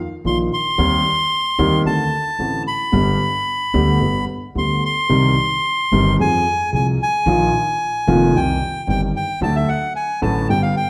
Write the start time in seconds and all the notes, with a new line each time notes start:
0.24 A#1 A#2 D#3 F3 A#3 F4 C6
0.53 C6
0.78 D#2 D#3 G3 C4 G4
1.59 D#2 D#3 G3 C4 G4
1.85 D2 D3 A3 C4 F#4 A5
2.39 A1 A2 D3 A3 C4 F#4
2.67 B5
2.92 G1 G2 D3 G3 B3 G4
3.74 D2 D3 G3 B3 G4
4.01 G1 G2 D3 G3 B3 G4
4.55 D2 D3 G3 B3 G4 C6
4.85 C6
5.09 C2 C3 D#3 G3 C4 G4
5.92 G1 G2 D#3 G3 C4 G4
6.19 F2 F3 G#3 C4 G#4 G#5
6.73 C2 C3 F3 G#3 C4 G#4 G#5
7.02 G#5
7.26 A#1 A#2 D#3 F3 A#3 F4
8.07 F1 F2 D#3 F3 A#3 F4
8.34 C2 C3 D#3 G3 C4 G4 G5
8.87 G1 G2 D#3 G3 C4 G4 G5
9.16 G5
9.41 D2 D3 F#3 A3 F#4 A5
9.56 E5
9.68 F#5
9.96 G#5
10.22 A1 A2 D3 F#3 A3 F#4 A5
10.49 G1 G2 D3 G3 B3 G4 G5
10.62 F5
10.77 G5